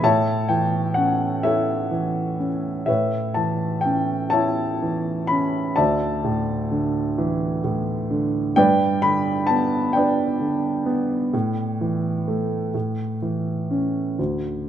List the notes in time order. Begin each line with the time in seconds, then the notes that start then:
0.03 A2 C#5 E5 A5
0.49 E3 G5
0.94 C#4 F#5
1.43 E4 A4 C#5 E5
1.91 E3
2.39 C#4
2.86 A2 B4 C#5 E5
3.34 E3 A5
3.81 G5
3.85 C#4
4.30 E4 C#5 E5 A5
4.82 E3
5.27 C#4 B5
5.76 D2 D5 E5 A5
6.24 A2
6.72 D3
7.18 E3
7.64 A2
8.11 D3
8.56 G2 B4 D5 G5
9.02 D3 B5
9.47 B3 A5
9.93 D4 G5
9.97 B4 D5
10.40 D3
10.86 B3
11.34 A2
11.81 E3
12.28 A3
12.74 A2
13.22 E3
13.71 C#4
14.19 D2